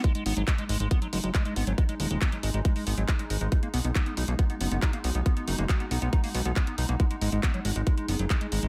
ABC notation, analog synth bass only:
X:1
M:4/4
L:1/16
Q:1/4=138
K:G#m
V:1 name="Analog synth bass" clef=bass
z2 G,,, G,,, z2 G,,, G,,, z2 F,,, F,,, z2 G,,, G,,, | z2 D,,, D,,, z2 G,,, G,,, z2 G,,, G,,, z2 G,,, G,,, | z2 B,,, B,,, z2 B,,, B,,, z2 F,,, F,,, z2 B,,, B,,, | z2 F,,, F,,, z2 B,,, B,,, z2 B,,, B,,, z2 B,,, B,,, |
z2 G,,, G,,, z2 G,,, G,,, z2 F,,, F,,, z2 G,,, G,,, |]